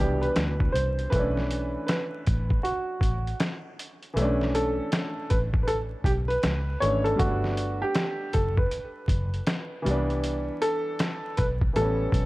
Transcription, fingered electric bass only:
0.00 0.29 C2 medium
0.36 0.68 D2 loud
0.74 1.06 C2 medium
1.12 1.75 B1 medium
2.27 2.58 A1 loud
3.01 3.33 A1 medium
4.16 4.79 B1 loud
5.31 5.94 A1 medium
6.04 6.36 B1 medium
6.44 6.75 C#2 medium
6.82 7.13 G#1 medium
7.20 7.83 G1 medium
8.35 8.66 F#1 medium
9.08 9.40 F#1 medium
9.86 10.49 C2 medium
11.39 11.70 B1 medium
11.76 12.07 A1 medium
12.12 12.26 B1 medium

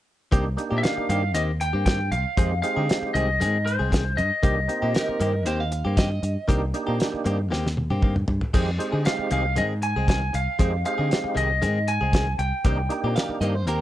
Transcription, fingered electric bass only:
0.32 0.56 C2 medium
0.72 0.83 A#2 medium
0.98 muted fingered electric bass stroke soft
1.09 1.35 G2 medium
1.35 1.71 D#2 medium
1.74 2.13 G2 medium
2.11 2.24 C2 medium
2.38 2.61 F2 medium
2.77 2.88 D3 medium
3.02 muted fingered electric bass stroke soft
3.15 3.42 C2 medium
3.40 3.77 G#2 medium
3.80 4.19 C2 medium
4.18 4.30 G2 medium
4.43 4.67 C2 medium
4.82 4.94 A#2 medium
5.09 muted fingered electric bass stroke soft
5.20 5.46 G2 medium
5.46 5.82 D#2 medium
5.85 6.20 G2 medium
6.23 6.35 G2 medium
6.49 6.72 C2 loud
6.88 6.99 A#2 medium
7.14 muted fingered electric bass stroke soft
7.26 7.51 G2 medium
7.51 7.87 D#2 medium
7.90 8.25 G2 medium
8.28 8.41 G2 medium
8.54 8.78 F2 medium
8.93 9.04 D3 medium
9.19 muted fingered electric bass stroke soft
9.31 9.59 C2 medium
9.57 9.93 G#2 medium
9.96 10.31 C2 medium
10.34 10.47 C2 medium
10.59 10.83 F2 medium
10.99 11.10 D3 medium
11.24 muted fingered electric bass stroke soft
11.36 11.63 C2 medium
11.62 11.98 G#2 medium
12.01 12.36 C2 medium
12.39 12.51 C2 medium
12.65 12.88 C2 medium
13.04 13.15 A#2 medium
13.29 muted fingered electric bass stroke soft
13.41 13.67 G2 medium
13.67 13.81 D#2 loud

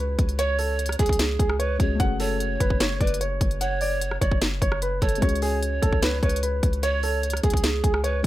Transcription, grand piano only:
0.00 0.36 B4 medium
0.39 0.54 C#5 loud
0.59 0.74 A4 medium
0.99 1.14 G#4 medium
1.39 1.55 G#4 medium
1.59 1.75 C#5 medium
2.00 2.15 F#5 medium
2.20 2.35 A4 medium
2.60 2.75 B4 medium
2.80 2.96 C#5 medium
3.01 3.16 D5 medium
3.21 3.59 C#5 medium
3.61 3.76 F#5 medium
3.81 3.97 D5 medium
4.21 4.37 C#5 medium
4.62 4.77 C#5 medium
4.82 4.97 B4 medium
5.02 5.17 A4 medium
5.22 5.37 C#5 medium
5.42 5.58 G#4 medium
5.82 5.97 A4 medium
6.02 6.18 B4 medium
6.23 6.38 C#5 medium
6.43 6.81 B4 medium
6.83 6.98 C#5 loud
7.03 7.19 A4 medium
7.44 7.59 G#4 medium
7.84 7.99 G#4 medium
8.04 8.19 C#5 medium

